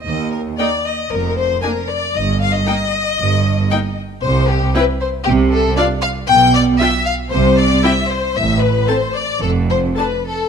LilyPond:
<<
  \new Staff \with { instrumentName = "Violin section" } { \time 4/4 \key ees \major \tempo 4 = 115 r4 g''4 r4 aes''4 | r4 g''4 r4 g''4 | \key c \major r4 g''4 r4 f''4 | r4 g''4 r4 g''4 |
r4 a''4 r4 a''4 | }
  \new Staff \with { instrumentName = "Violin section" } { \time 4/4 \key ees \major ees''8 bes'8 d''8 ees''8 bes'8 c''8 bes'8 d''8 | ees''8 f''16 ees''2~ ees''8. r8 | \key c \major c''8 g'8 b'8 c''8 g'8 a'8 d''8 f''8 | g''8 d''8 e''8 f''8 c''8 d''8 e''8 c''8 |
e''8 b'8 c''8 d''8 a'8 c''8 b'8 a'8 | }
  \new Staff \with { instrumentName = "Viola section" } { \time 4/4 \key ees \major r4 <bes ees'>4 r4 <bes d'>4 | r4 <bes ees'>4 r4 <bes ees'>4 | \key c \major r4 <c' e'>4 r4 <d' f'>4 | r4 <d' f'>4 r4 <c' e'>4 |
r4 <c' a'>4 r4 <d' a'>4 | }
  \new Staff \with { instrumentName = "Cello section" } { \clef bass \time 4/4 \key ees \major ees,4 r4 f,4 r4 | g,4 r4 g,4 r4 | \key c \major c4 r4 c4 r4 | b,4 r4 c4 r4 |
a,4 r4 f,4 r4 | }
  \new Staff \with { instrumentName = "Double bass section" } { \clef bass \time 4/4 \key ees \major ees,4 r4 f,,4 r4 | g,,4 r4 g,,4 r4 | \key c \major c,4 r4 c,4 r4 | b,,4 r4 c,4 r4 |
a,,4 r4 f,,4 r4 | }
>>